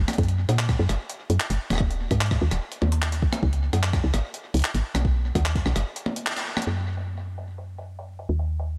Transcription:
0.08 cross-stick medium
0.08 closed hi-hat medium
0.08 high tom medium
0.13 closed hi-hat soft
0.18 0.46 F#2 loud
0.18 kick loud
0.18 closed hi-hat soft
0.23 closed hi-hat soft
0.28 closed hi-hat soft
0.49 0.76 A#2 loud
0.49 cross-stick soft
0.49 closed hi-hat medium
0.59 clap loud
0.69 kick loud
0.69 cross-stick soft
0.69 closed hi-hat soft
0.79 0.87 F#2 loud
0.89 0.98 F#1 medium
0.89 cross-stick soft
0.89 closed hi-hat medium
1.10 closed hi-hat medium
1.30 1.38 F#2 loud
1.30 closed hi-hat medium
1.40 clap loud
1.50 1.58 F#1 medium
1.50 closed hi-hat soft
1.70 2.08 D#1 medium
1.70 cross-stick soft
1.70 closed hi-hat medium
1.70 high tom medium
1.73 cross-stick soft
1.75 cross-stick soft
1.78 kick loud
1.78 cross-stick medium
1.91 closed hi-hat soft
2.11 2.38 G#2 loud
2.11 kick medium
2.11 cross-stick soft
2.11 closed hi-hat medium
2.21 clap loud
2.26 closed hi-hat soft
2.31 kick loud
2.31 cross-stick medium
2.41 2.50 D#2 loud
2.51 2.60 D#1 medium
2.51 cross-stick medium
2.51 closed hi-hat medium
2.72 closed hi-hat soft
2.82 3.30 D#2 medium
2.82 high tom medium
2.92 closed hi-hat medium
3.02 clap loud
3.12 closed hi-hat soft
3.22 kick loud
3.33 cross-stick medium
3.33 closed hi-hat medium
3.33 high tom medium
3.43 3.70 C#2 loud
3.43 kick loud
3.53 closed hi-hat soft
3.73 4.01 F#2 loud
3.73 cross-stick soft
3.73 closed hi-hat medium
3.83 clap loud
3.93 kick loud
3.93 cross-stick medium
3.93 closed hi-hat soft
4.04 4.12 C#2 loud
4.14 4.22 G#1 medium
4.14 cross-stick medium
4.14 closed hi-hat medium
4.34 closed hi-hat medium
4.54 4.62 C#2 loud
4.54 closed hi-hat medium
4.57 closed hi-hat soft
4.59 closed hi-hat soft
4.62 clap loud
4.62 closed hi-hat soft
4.74 4.83 G#1 medium
4.74 closed hi-hat medium
4.95 5.32 B1 medium
4.95 cross-stick medium
4.95 closed hi-hat medium
4.95 high tom medium
5.05 kick loud
5.35 5.63 D#2 loud
5.35 kick medium
5.35 cross-stick soft
5.35 closed hi-hat medium
5.45 clap loud
5.56 kick loud
5.56 closed hi-hat soft
5.66 5.74 B1 loud
5.66 cross-stick medium
5.76 5.84 F#1 medium
5.76 cross-stick medium
5.76 closed hi-hat medium
5.96 closed hi-hat medium
6.06 high tom medium
6.16 closed hi-hat medium
6.26 clap loud
6.37 closed hi-hat medium
6.57 cross-stick medium
6.57 high tom medium
6.62 closed hi-hat medium
6.67 8.27 F#2 medium
6.77 closed hi-hat soft
6.97 closed hi-hat medium
7.18 closed hi-hat soft
7.38 closed hi-hat medium
7.58 closed hi-hat medium
7.78 closed hi-hat medium
7.99 closed hi-hat soft
8.19 closed hi-hat medium
8.29 8.78 D#2 medium
8.39 closed hi-hat soft
8.60 closed hi-hat medium

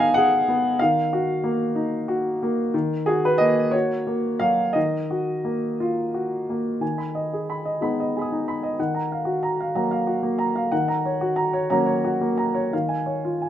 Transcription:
0.00 0.74 D#3 medium
0.00 0.48 B3 soft
0.00 0.35 D#4 medium
0.00 0.17 G#4 medium
0.00 0.81 B4 medium
0.00 0.81 D#5 medium
0.00 0.14 F5 medium
0.00 0.81 G#5 loud
0.14 0.67 G#4 medium
0.14 0.79 F#5 medium
0.48 0.80 B3 medium
0.79 2.71 D#3 medium
0.79 2.40 F5 medium
1.13 1.63 F#4 medium
1.44 1.95 A#3 soft
1.75 2.27 D#4 soft
2.08 2.60 F#4 medium
2.43 2.74 A#3 soft
2.74 4.72 D#3 medium
3.06 3.61 F#4 soft
3.06 3.23 G#4 medium
3.25 3.41 B4 medium
3.38 3.94 A#3 medium
3.38 3.72 D#5 medium
3.71 4.27 F#4 soft
3.71 4.40 C#5 medium
4.07 4.62 A#3 soft
4.40 4.75 F#3 soft
4.40 4.75 F5 medium
4.73 6.77 D#3 medium
4.73 5.77 D#5 medium
5.10 5.65 F#4 soft
5.44 5.99 A#3 soft
5.80 6.34 F4 soft
6.14 6.69 F#4 soft
6.50 6.82 A#3 soft
6.81 7.77 D#3 soft
6.81 7.08 G#5 soft
6.98 7.24 B5 soft
7.15 7.41 D#5 soft
7.33 7.59 G#4 soft
7.50 7.75 B5 soft
7.65 7.91 D#5 soft
7.81 8.74 G#3 soft
7.81 8.75 B3 soft
7.81 8.30 D#4 soft
7.81 8.07 B5 soft
8.00 8.24 D#5 soft
8.16 8.41 G#4 soft
8.16 8.76 G#5 soft
8.16 8.46 B5 soft
8.21 8.78 D#6 soft
8.32 8.57 D#4 soft
8.48 8.73 B5 soft
8.63 8.79 D#5 soft
8.79 9.73 D#3 soft
8.79 9.05 F#5 soft
8.94 9.20 A#5 soft
9.12 9.37 F5 soft
9.25 9.52 F#4 soft
9.43 9.68 A#5 soft
9.60 9.85 F5 soft
9.75 10.68 F#3 soft
9.75 10.21 A#3 soft
9.75 10.01 A#5 soft
9.91 10.17 F5 soft
10.07 10.33 F#4 soft
10.22 10.49 A#3 soft
10.39 10.65 A#5 soft
10.56 10.72 F5 medium
10.72 11.67 D#3 medium
10.72 10.98 F#5 medium
10.88 11.14 A#5 soft
11.05 11.31 C#5 medium
11.21 11.47 F#4 medium
11.36 11.63 A#5 medium
11.53 11.80 C#5 medium
11.70 12.68 F#3 soft
11.70 12.20 A#3 soft
11.70 12.69 C#4 soft
11.70 11.97 A#5 medium
11.86 12.13 C#5 medium
12.04 12.31 F#4 medium
12.21 12.48 A#3 soft
12.38 12.65 A#5 soft
12.54 12.72 C#5 medium
12.73 13.49 D#3 soft
12.73 13.01 F5 soft
12.89 13.17 G#5 soft
13.06 13.35 C#5 soft
13.25 13.49 F4 soft
13.42 13.49 G#5 soft

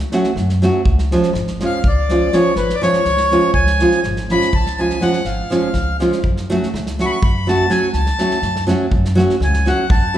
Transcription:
0.12 0.30 F#3 medium
0.12 0.30 A3 medium
0.12 0.30 C#4 medium
0.12 0.30 F#4 medium
0.12 snare soft
0.24 snare soft
0.36 0.66 F#2 medium
0.36 snare soft
0.49 snare soft
0.62 0.79 F#3 medium
0.62 0.80 A3 medium
0.62 0.80 C#4 medium
0.62 0.80 F#4 medium
0.62 snare soft
0.85 1.15 C#2 medium
0.85 kick medium
0.99 snare soft
1.11 1.29 F3 medium
1.11 1.30 G#3 medium
1.11 1.30 C#4 medium
1.11 1.30 F4 medium
1.11 snare soft
1.23 snare soft
1.33 1.64 G#1 loud
1.33 snare soft
1.47 snare soft
1.60 1.78 F3 medium
1.60 1.79 G#3 soft
1.60 1.79 C#4 soft
1.60 1.79 F4 medium
1.60 snare soft
1.65 1.88 F5 medium
1.84 2.27 C#2 medium
1.84 kick medium
1.88 2.36 D5 medium
2.09 2.27 F3 soft
2.09 2.27 G#3 soft
2.09 2.27 C#4 medium
2.09 2.27 F4 medium
2.09 snare soft
2.33 2.50 F3 medium
2.33 2.50 G#3 soft
2.33 2.50 C#4 medium
2.33 2.51 F4 medium
2.33 2.55 C#5 medium
2.33 snare soft
2.56 2.72 G#1 medium
2.56 2.76 B4 medium
2.56 snare soft
2.69 snare soft
2.74 2.82 D5 medium
2.81 2.99 F3 medium
2.81 2.99 G#3 medium
2.81 2.99 C#4 soft
2.81 3.00 F4 medium
2.81 3.51 C#5 medium
2.81 snare soft
2.93 snare soft
3.05 3.35 C#2 medium
3.05 snare soft
3.17 snare soft
3.31 3.49 F3 medium
3.31 3.49 G#3 medium
3.31 3.49 C#4 soft
3.31 3.49 F4 medium
3.31 snare soft
3.54 3.84 C#2 medium
3.54 4.00 G#5 medium
3.54 kick medium
3.67 snare soft
3.79 3.98 F3 medium
3.79 3.98 G#3 medium
3.79 3.98 C#4 medium
3.79 3.99 F4 medium
3.79 snare soft
3.92 snare soft
4.03 4.34 G#1 medium
4.03 snare soft
4.16 snare soft
4.29 4.47 F3 soft
4.29 4.48 G#3 medium
4.29 4.48 C#4 medium
4.29 4.48 F4 medium
4.29 4.55 B5 medium
4.29 snare soft
4.42 snare soft
4.53 4.96 C#2 medium
4.53 4.80 A5 medium
4.53 kick medium
4.66 snare soft
4.78 4.95 F3 soft
4.78 4.96 G#3 soft
4.78 4.96 C#4 medium
4.78 4.96 F4 medium
4.78 5.03 G#5 medium
4.90 snare soft
5.00 5.18 F3 soft
5.00 5.19 G#3 medium
5.00 5.19 C#4 soft
5.00 5.19 F4 medium
5.00 5.26 F#5 medium
5.00 snare soft
5.13 snare soft
5.24 5.40 G#1 medium
5.24 5.97 F5 medium
5.24 snare soft
5.50 5.68 F3 medium
5.50 5.68 G#3 medium
5.50 5.68 C#4 medium
5.50 5.69 F4 medium
5.50 snare soft
5.74 6.04 C#2 medium
5.74 kick soft
5.74 snare soft
6.00 6.17 F3 medium
6.00 6.18 G#3 medium
6.00 6.18 C#4 medium
6.00 6.18 F4 medium
6.00 snare soft
6.12 snare soft
6.24 6.54 F#2 medium
6.24 kick medium
6.37 snare soft
6.50 6.67 F#3 medium
6.50 6.67 A3 medium
6.50 6.68 C#4 medium
6.50 6.68 F#4 medium
6.50 snare soft
6.63 snare soft
6.74 7.03 C#2 loud
6.74 snare soft
6.86 snare soft
6.99 7.16 F#3 medium
6.99 7.16 A3 medium
6.99 7.17 C#4 soft
6.99 7.17 F#4 medium
6.99 7.06 C#6 medium
6.99 snare soft
7.06 7.11 B5 medium
7.12 7.22 C#6 medium
7.22 7.65 F#2 medium
7.22 7.48 B5 medium
7.22 kick medium
7.47 7.64 F#3 medium
7.47 7.64 A3 soft
7.47 7.65 C#4 soft
7.47 7.65 F#4 medium
7.47 7.72 A5 medium
7.47 snare soft
7.70 7.87 F#3 medium
7.70 7.87 A3 medium
7.70 7.88 C#4 soft
7.70 7.88 F#4 medium
7.70 7.92 G#5 medium
7.70 snare soft
7.93 8.09 C#2 medium
7.93 8.65 A5 medium
7.93 snare soft
8.06 snare soft
8.19 8.36 F#3 medium
8.19 8.36 A3 medium
8.19 8.37 C#4 medium
8.19 8.37 F#4 medium
8.19 snare soft
8.31 snare soft
8.42 8.72 F#2 medium
8.42 snare soft
8.56 snare soft
8.67 8.85 F#3 medium
8.67 8.85 A3 medium
8.67 8.85 C#4 medium
8.67 8.86 F#4 medium
8.67 snare soft
8.91 9.21 F#2 medium
8.91 kick medium
9.05 snare soft
9.15 9.34 F#3 medium
9.15 9.34 A3 medium
9.15 9.35 C#4 medium
9.15 9.35 F#4 medium
9.15 snare soft
9.30 snare soft
9.40 9.70 C#2 loud
9.40 9.67 G#5 medium
9.40 snare soft
9.54 snare soft
9.66 9.83 F#3 medium
9.66 9.84 A3 medium
9.66 9.84 C#4 medium
9.66 9.84 F#4 medium
9.66 9.89 F#5 medium
9.66 snare soft
9.90 10.18 F#2 medium
9.90 10.16 A5 medium
9.90 kick loud
10.14 10.18 F#3 soft
10.14 10.18 A3 medium
10.14 10.18 C#4 soft

